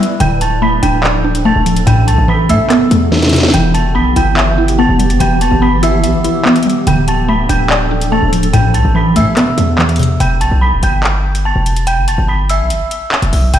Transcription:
Already playing: G3 B3 E4 B4 E5 E6
0.00 G3, closed hi-hat
0.20 D1 D3 F3 D4 A4 G5 G6, closed hi-hat
0.41 A5 A6, closed hi-hat
0.62 A3 B5 B6
0.83 D1 D4 G5 G6, closed hi-hat
1.04 D5, clap
1.24 D4
1.35 closed hi-hat
1.45 A3 A5 A6
1.56 D1
1.66 F3, closed hi-hat
1.76 closed hi-hat
1.87 A1 A2 C3 B3 G5 G6, closed hi-hat
2.07 C2 A5 A6, closed hi-hat
2.18 A1
2.28 E3 B5 B6
2.49 A2 A3 E5 E6, closed hi-hat
2.70 B3, cross-stick, clap, closed hi-hat
2.91 E2 A3, closed hi-hat
3.12 E3, snare
3.17 snare
3.22 snare, closed hi-hat
3.28 snare, closed hi-hat
3.33 C3, snare, closed hi-hat, open hi-hat
3.38 snare
3.43 snare
3.48 snare
3.53 E1 E3 G4 G5 G6, closed hi-hat
3.74 A5 A6, closed hi-hat
3.95 B1 B3 B5 B6
4.16 G1 E4 G5 G6, closed hi-hat
4.37 E5, clap
4.58 E4
4.68 closed hi-hat
4.79 B3 A5 A6
4.89 E1
4.99 G3, closed hi-hat
5.10 G1, closed hi-hat
5.20 E1 E3 G5 G6, closed hi-hat
5.41 A5 A6, closed hi-hat
5.52 G1
5.62 B3 B5 B6
5.83 E4 E5 E6, closed hi-hat
6.04 B1 E5, closed hi-hat
6.14 G1
6.24 E4, closed hi-hat
6.45 B3, clap
6.56 closed hi-hat
6.63 G3, closed hi-hat
6.70 closed hi-hat
6.87 D1 D3 F3 D4 A4 G5 G6, closed hi-hat
7.08 A5 A6, closed hi-hat
7.28 A3 B5 B6
7.49 D1 D4 G5 G6, closed hi-hat
7.70 D5, clap
7.91 D4
8.01 closed hi-hat
8.12 A3 A5 A6
8.22 D1
8.32 F3, closed hi-hat
8.43 closed hi-hat
8.53 A1 A2 C3 B3 G5 G6, closed hi-hat
8.74 C2 A5 A6, closed hi-hat
8.85 A1
8.95 E3 B5 B6
9.16 A2 A3 E5 E6, closed hi-hat
9.37 B3, cross-stick, clap, closed hi-hat
9.58 E2 A3, closed hi-hat
9.78 E3, clap
9.89 closed hi-hat
9.96 C3, closed hi-hat, open hi-hat
10.03 closed hi-hat
10.20 E1 G5 G6, closed hi-hat
10.41 B1 A5 A6, closed hi-hat
10.51 B1
10.61 B5 B6
10.72 D1
10.83 G1 G5 G6, closed hi-hat
11.04 clap
11.35 closed hi-hat
11.45 A5 A6
11.56 E1
11.66 closed hi-hat
11.76 closed hi-hat
11.87 G5 G6, closed hi-hat
11.97 G1
12.08 E1 A5 A6, closed hi-hat
12.18 G1
12.28 B5 B6
12.49 E5 E6, closed hi-hat
12.60 B1
12.70 G1, closed hi-hat
12.91 closed hi-hat
13.12 clap
13.22 E1, closed hi-hat
13.33 B1, closed hi-hat, open hi-hat
13.54 D1 G5 G6, closed hi-hat

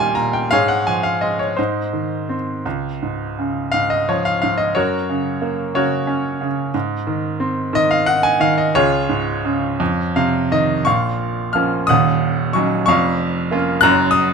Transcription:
Already playing: D#2 A#2 D#3 G3 G4 A#4 D#5 F5 G5
0.00 G#5
0.15 A#2 A#5
0.33 G5
0.51 G#2 G#4 C#5 F5
0.68 F#5
0.87 F3 G#5
1.03 F5
1.21 G#3 D#5
1.39 C#5
1.57 G#2 D#4 C5
1.93 D#3
2.29 C4
2.65 C#2
3.02 G#2
3.39 C#3
3.72 G#2 F5
3.90 D#5
4.09 F3 C#5
4.25 F5
4.42 G#2 F5
4.58 D#5
4.75 F#2 F#4 A#4 C#5
5.09 C#3
5.42 A#3
5.75 C#3 F#4 A#4 C#5
6.07 C#4
6.41 C#3
6.74 G#2
7.07 D#3
7.40 C4
7.73 D#3 D#5
7.91 F5
8.06 D#4 F#5
8.23 G#5
8.40 D#3 F5
8.58 D#5
8.75 C#2 F4 G#4 C#5
9.09 G#2
9.45 C#3
9.80 F2
10.16 C3 F5
10.52 D#3 D#5
10.85 A#1 A#2 F5 C#6
11.53 F3 A#3 C#4 F6
11.87 D#1 D#2 F#5 D#6
12.53 F#3 C#4 D#4 C#6
12.86 F1 F2 F5 C#6
13.51 A#3 C#4 F4
13.81 F#1 F#2 A#5 F#6
14.11 D#6

